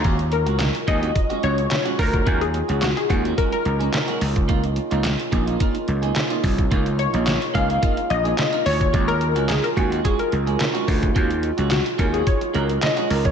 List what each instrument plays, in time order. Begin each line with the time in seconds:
Already playing: analog polysynth A#5
0.03 slap bass D#2, french horn section D#3 F#3 G#3 C#4 F4, clean electric guitar G#3 C#4 F#4, kick, closed hi-hat
0.18 muted clean electric guitar stroke, closed hi-hat
0.32 analog polysynth A#4, muted clean electric guitar stroke, closed hi-hat
0.46 slap bass C#2, clean electric guitar G#3 C#4 F#4, closed hi-hat
0.59 muted clean electric guitar stroke, snare, clap, closed hi-hat
0.74 muted clean electric guitar stroke, closed hi-hat
0.87 slap bass D#2, clean electric guitar G#3 C#4 G#4, analog polysynth D#5, kick, closed hi-hat
1.02 clean electric guitar G#3 C#4 F#4, closed hi-hat
1.15 muted clean electric guitar stroke, kick, closed hi-hat
1.30 clean electric guitar G#3 C#4 F#4, closed hi-hat
1.43 slap bass C#2, clean electric guitar G#3 C#4 F#4, analog polysynth C#5, closed hi-hat
1.58 muted clean electric guitar stroke, closed hi-hat
1.70 muted clean electric guitar stroke, snare, clap, closed hi-hat
1.85 clean electric guitar G#3 C#4 F#4, closed hi-hat
1.98 slap bass D2, analog polysynth A#4, muted clean electric guitar stroke, kick, open hi-hat
2.13 muted clean electric guitar stroke, kick, closed hi-hat
2.26 slap bass D#2, clean electric guitar G#3 C#4 F#4, kick, closed hi-hat
2.41 analog polysynth G#4, muted clean electric guitar stroke, closed hi-hat
2.54 muted clean electric guitar stroke, closed hi-hat
2.69 slap bass C#2, clean electric guitar G#3 C#4 F#4, closed hi-hat
2.82 analog polysynth F#4, muted clean electric guitar stroke, snare, clap, closed hi-hat
2.97 analog polysynth G#4, muted clean electric guitar stroke, closed hi-hat
3.09 slap bass D#2, clean electric guitar G#3 C#4 G#4, analog polysynth F#4, kick, closed hi-hat
3.24 clean electric guitar G#3 C#4 F#4, closed hi-hat
3.37 clean electric guitar G#3 C#4 F#4, analog polysynth A#4, kick, closed hi-hat
3.52 analog polysynth A#4, muted clean electric guitar stroke, closed hi-hat
3.65 slap bass C#2, muted clean electric guitar stroke, closed hi-hat
3.79 clean electric guitar G#3 C#4 G#4, closed hi-hat
3.93 muted clean electric guitar stroke, snare, clap, closed hi-hat
4.08 clean electric guitar G#3 C#4 F#4, closed hi-hat
4.21 slap bass C#2, french horn section A#3 F4, muted clean electric guitar stroke, open hi-hat
4.36 muted clean electric guitar stroke, kick, closed hi-hat
4.48 clean electric guitar A#3 D#4 F4, kick, closed hi-hat
4.63 muted clean electric guitar stroke, closed hi-hat
4.76 muted clean electric guitar stroke, closed hi-hat
4.91 slap bass C#2, clean electric guitar A#3 D#4 F4, closed hi-hat
5.04 muted clean electric guitar stroke, snare, clap, closed hi-hat
5.19 muted clean electric guitar stroke, closed hi-hat
5.32 slap bass A#1, clean electric guitar A#3 D#4 G#4, kick, closed hi-hat
5.46 clean electric guitar A#3 D#4 F4, closed hi-hat
5.59 clean electric guitar A#3 D#4 F4, kick, closed hi-hat
5.74 muted clean electric guitar stroke, closed hi-hat
5.88 slap bass C#2, muted clean electric guitar stroke, closed hi-hat
6.02 clean electric guitar A#3 D#4 G#4, closed hi-hat
6.15 muted clean electric guitar stroke, snare, clap, closed hi-hat
6.30 clean electric guitar A#3 D#4 F4, closed hi-hat
6.43 slap bass C2, muted clean electric guitar stroke, kick, open hi-hat
6.58 muted clean electric guitar stroke, kick, closed hi-hat
6.71 slap bass C#2, clean electric guitar A#3 D#4 F4, kick, closed hi-hat
6.86 muted clean electric guitar stroke, closed hi-hat
6.99 analog polysynth C#5, muted clean electric guitar stroke, closed hi-hat
7.13 slap bass A#1, clean electric guitar A#3 D#4 F4, closed hi-hat
7.26 muted clean electric guitar stroke, snare, clap, closed hi-hat
7.41 muted clean electric guitar stroke, closed hi-hat
7.54 slap bass C#2, clean electric guitar A#3 D#4 G#4, analog polysynth F5, kick, closed hi-hat
7.69 clean electric guitar A#3 D#4 F4, closed hi-hat
7.82 clean electric guitar A#3 D#4 F4, kick, closed hi-hat
7.97 muted clean electric guitar stroke, closed hi-hat
8.10 slap bass A#1, analog polysynth D#5, muted clean electric guitar stroke, closed hi-hat
8.24 clean electric guitar A#3 D#4 G#4, closed hi-hat
8.38 muted clean electric guitar stroke, snare, clap, closed hi-hat
8.52 clean electric guitar A#3 D#4 F4, closed hi-hat
8.66 slap bass D2, analog polysynth C#5, muted clean electric guitar stroke, open hi-hat
8.80 muted clean electric guitar stroke, kick, closed hi-hat
8.93 slap bass D#2, french horn section D#3 F#3, clean electric guitar G#3 C#4 F#4, kick, closed hi-hat
9.08 analog polysynth A#4, muted clean electric guitar stroke, closed hi-hat
9.21 muted clean electric guitar stroke, closed hi-hat
9.35 slap bass C#2, clean electric guitar G#3 C#4 F#4, closed hi-hat
9.48 analog polysynth G#4, muted clean electric guitar stroke, snare, clap, closed hi-hat
9.63 analog polysynth A#4, muted clean electric guitar stroke, closed hi-hat
9.76 slap bass D#2, clean electric guitar G#3 C#4 G#4, analog polysynth F#4, kick, closed hi-hat
9.91 clean electric guitar G#3 C#4 F#4, closed hi-hat
10.04 clean electric guitar G#3 C#4 F#4, analog polysynth G#4, kick, closed hi-hat
10.19 analog polysynth A#4, muted clean electric guitar stroke, closed hi-hat
10.32 slap bass C#2, muted clean electric guitar stroke, closed hi-hat
10.46 clean electric guitar G#3 C#4 G#4, closed hi-hat
10.60 snare, clap, closed hi-hat
10.74 clean electric guitar G#3 C#4 F#4, closed hi-hat
10.87 slap bass D2, muted clean electric guitar stroke, kick, open hi-hat
11.02 muted clean electric guitar stroke, kick, closed hi-hat
11.15 slap bass D#2, clean electric guitar G#3 C#4 F#4, kick, closed hi-hat
11.30 muted clean electric guitar stroke, closed hi-hat
11.43 muted clean electric guitar stroke, closed hi-hat
11.57 slap bass C#2, clean electric guitar G#3 C#4 F#4, closed hi-hat
11.71 analog polysynth F#4, muted clean electric guitar stroke, snare, clap, closed hi-hat
11.86 muted clean electric guitar stroke, closed hi-hat
11.98 slap bass D#2, clean electric guitar G#3 C#4 G#4, analog polysynth A#4, kick, closed hi-hat
12.13 clean electric guitar G#3 C#4 F#4, analog polysynth G#4, closed hi-hat
12.26 analog polysynth C#5, muted clean electric guitar stroke, kick, closed hi-hat
12.41 muted clean electric guitar stroke, closed hi-hat
12.54 slap bass C#2, clean electric guitar G#3 C#4 F#4, analog polysynth A#4, closed hi-hat
12.68 muted clean electric guitar stroke, closed hi-hat
12.82 analog polysynth D#5, muted clean electric guitar stroke, snare, clap, closed hi-hat
12.96 clean electric guitar G#3 C#4 F#4, closed hi-hat
13.10 slap bass C#2, french horn section A#3, analog polysynth A#4, muted clean electric guitar stroke, open hi-hat
13.25 analog polysynth C#5, muted clean electric guitar stroke, kick, closed hi-hat